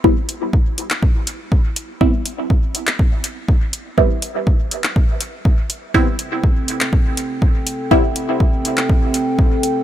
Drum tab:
HH |--x---x---x---x-|--x---x---x---x-|--x---x---x---x-|--x---x---x---x-|
CP |-------x--------|-------x--------|-------x--------|-------x--------|
BD |o---o---o---o---|o---o---o---o---|o---o---o---o---|o---o---o---o---|

HH |--x---x---x---x-|
CP |-------x--------|
BD |o---o---o---o---|